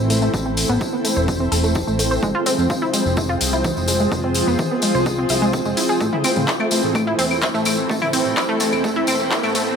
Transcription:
Already playing: analog synth pad E3 A3 C4, ambient pad C4 E4 A4 C5
0.00 analog synth bass A1
0.10 synth arpeggio sound A3, open hi-hat, tambourine
0.22 synth arpeggio sound A3, tambourine
0.34 analog synth bass A1, kick, tambourine
0.46 synth arpeggio sound C4
0.57 open hi-hat, tambourine
0.69 analog synth bass A1, synth arpeggio sound B3, tambourine
0.81 synth arpeggio sound E3, kick, tambourine
0.93 synth arpeggio sound B3
1.05 synth arpeggio sound A3, open hi-hat, tambourine
1.17 analog synth bass E1, synth arpeggio sound C5, tambourine
1.28 kick, tambourine
1.40 synth arpeggio sound C4
1.52 analog synth bass E1, synth arpeggio sound A4, open hi-hat, tambourine
1.64 synth arpeggio sound A3, tambourine
1.75 synth arpeggio sound E3, kick, tambourine
1.87 analog synth bass A1, synth arpeggio sound A3, tambourine
1.99 synth arpeggio sound A3, open hi-hat, tambourine
2.11 synth arpeggio sound C5, tambourine
2.23 analog synth bass F1, analog synth pad F3 G#3, synth arpeggio sound G#3, kick, tambourine
2.35 synth arpeggio sound F4
2.46 synth arpeggio sound C4, open hi-hat, tambourine
2.58 analog synth bass F2, ambient pad F4 G#4, tambourine
2.70 synth arpeggio sound F4, kick, tambourine
2.82 synth arpeggio sound E4
2.94 synth arpeggio sound G#3, open hi-hat, tambourine
3.06 analog synth bass F1, tambourine
3.17 synth arpeggio sound E4, kick, tambourine
3.29 synth arpeggio sound F4
3.41 analog synth bass C2, open hi-hat, tambourine
3.53 synth arpeggio sound E4, tambourine
3.64 synth arpeggio sound E3, kick, tambourine
3.76 analog synth bass F1, tambourine
3.88 synth arpeggio sound G#3, open hi-hat, tambourine
3.99 synth arpeggio sound G#3, tambourine
4.12 analog synth bass F1, kick, tambourine
4.24 synth arpeggio sound C4
4.34 open hi-hat, tambourine
4.47 analog synth bass F1, synth arpeggio sound B3, tambourine
4.59 synth arpeggio sound E3, kick, tambourine
4.71 synth arpeggio sound B3
4.82 synth arpeggio sound G#3, open hi-hat, tambourine
4.95 analog synth bass C2, synth arpeggio sound C5, tambourine
5.06 kick, tambourine
5.18 synth arpeggio sound C4
5.29 analog synth bass C2, synth arpeggio sound E4, open hi-hat, tambourine
5.42 synth arpeggio sound G#3, tambourine
5.53 synth arpeggio sound C4, kick, tambourine
5.65 analog synth bass F1, synth arpeggio sound G#3, tambourine
5.77 synth arpeggio sound E4, open hi-hat, tambourine
5.89 synth arpeggio sound G#4, tambourine
6.00 analog synth bass A1, analog synth pad E3 A3, synth arpeggio sound A3, ambient pad C4, kick, tambourine, riser
6.13 synth arpeggio sound E4, mid tom
6.17 ambient pad A4
6.24 synth arpeggio sound C4, open hi-hat, tambourine, claves
6.36 analog synth bass A2, mid tom, tambourine
6.48 synth arpeggio sound E4, kick, clap, tambourine
6.60 synth arpeggio sound A3, ambient pad E4, claves
6.71 synth arpeggio sound A3, open hi-hat, tambourine
6.83 analog synth bass A1, tambourine
6.95 synth arpeggio sound A3, kick, tambourine, claves
7.07 synth arpeggio sound E4
7.19 analog synth bass E1, synth arpeggio sound C4, open hi-hat, tambourine
7.31 tambourine, claves
7.42 synth arpeggio sound E4, kick, clap, tambourine
7.54 analog synth bass A1, synth arpeggio sound A3, tambourine
7.65 synth arpeggio sound A3, open hi-hat, tambourine, claves
7.77 tambourine
7.89 analog synth bass A1, synth arpeggio sound A3, kick, tambourine
8.02 synth arpeggio sound E4, mid tom, claves
8.13 synth arpeggio sound C4, open hi-hat, tambourine
8.25 analog synth bass A1, tambourine
8.37 synth arpeggio sound E4, kick, clap, tambourine, claves
8.49 synth arpeggio sound A3
8.60 synth arpeggio sound A3, open hi-hat, tambourine
8.72 analog synth bass E1, tambourine, claves
8.84 synth arpeggio sound A3, kick, tambourine
8.96 synth arpeggio sound E4
9.07 analog synth bass E1, synth arpeggio sound C4, open hi-hat, tambourine, claves
9.20 tambourine
9.31 synth arpeggio sound E4, kick, clap, tambourine
9.43 analog synth bass A1, synth arpeggio sound A3, tambourine, claves
9.55 synth arpeggio sound A3, open hi-hat, tambourine
9.66 tambourine

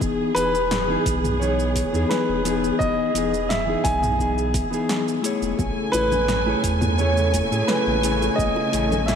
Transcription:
Already playing: clean electric guitar E3 B3 D#4 G#4, string section G#4
0.01 sub bass E1, kick, shaker
0.35 sub bass E1, clean electric guitar E3 B3 D#4 G#4, grand piano B4, open hi-hat, shaker
0.55 shaker
0.71 snare, mid tom, shaker
0.87 clean electric guitar E3 B3 D#4
0.92 clean electric guitar G#4
1.06 sub bass B1, kick, open hi-hat, shaker
1.24 mid tom, shaker
1.39 clean electric guitar E3 B3 D#4, grand piano C#5, shaker
1.43 clean electric guitar G#4
1.59 shaker
1.75 kick, open hi-hat, shaker
1.93 sub bass E2, clean electric guitar E3 B3 D#4 G#4, shaker
2.09 grand piano B4, snare, shaker
2.29 sub bass E1
2.44 clean electric guitar E3 B3 D#4 G#4, open hi-hat, shaker
2.64 shaker
2.79 sub bass E1, grand piano D#5, kick, shaker
3.14 sub bass E1, clean electric guitar E3 B3 D#4, open hi-hat, shaker
3.18 clean electric guitar G#4
3.34 shaker
3.49 grand piano E5, snare, mid tom, shaker
3.66 clean electric guitar E3 B3 D#4
3.70 clean electric guitar G#4
3.84 sub bass B1, grand piano G#5, kick, open hi-hat, shaker
4.03 mid tom, shaker
4.17 clean electric guitar E3 B3 D#4 G#4, kick, shaker
4.38 shaker
4.54 kick, open hi-hat, shaker
4.70 clean electric guitar E3 B3 D#4 G#4, shaker
4.89 snare, shaker
5.08 shaker
5.22 clean electric guitar A3 E4 G#4 C#5, open hi-hat, shaker
5.42 sub bass E1, shaker
5.58 sub bass A1, string section C#3 A3 G#5, kick, high bongo, high conga, shaker
5.92 sub bass A1, clean electric guitar A3 E4 G#4, grand piano B4, open hi-hat, high bongo, shaker
5.96 clean electric guitar C#5
6.11 high conga, low conga, shaker
6.28 snare, mid tom, shaker
6.46 clean electric guitar A3 E4 G#4 C#5, high bongo
6.63 sub bass E2, kick, open hi-hat, shaker
6.81 mid tom, high bongo, high conga, shaker
6.98 clean electric guitar A3 E4 G#4, grand piano C#5, shaker
7.02 clean electric guitar C#5
7.17 shaker
7.33 kick, open hi-hat, high bongo, high conga, shaker
7.51 sub bass A2, clean electric guitar A3 E4 G#4 C#5, shaker
7.67 grand piano B4, snare, high bongo, shaker
7.86 sub bass A1, high conga
8.01 clean electric guitar A3 E4 G#4, open hi-hat, shaker
8.06 clean electric guitar C#5
8.22 high bongo, shaker
8.36 sub bass A1, grand piano D#5, kick, high conga, shaker
8.56 high bongo
8.71 sub bass A1, clean electric guitar A3 E4 G#4 C#5, open hi-hat, shaker
8.91 high conga, low conga, shaker
9.06 grand piano E5, snare, mid tom, high bongo, shaker

